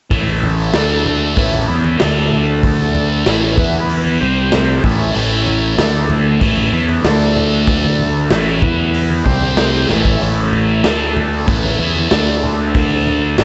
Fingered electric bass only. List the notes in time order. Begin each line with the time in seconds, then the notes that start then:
0.11 A1
0.75 D2
1.37 A1
1.70 E2
2.00 D2
3.27 A1
3.57 E2
4.22 C2
4.84 A1
5.16 A1
5.78 D2
6.42 A1
6.72 E2
7.04 D2
8.30 A1
8.62 E2
9.26 C2
9.90 A1
10.22 A1
10.85 D2
11.48 A1
11.80 E2
12.12 D2
13.39 A1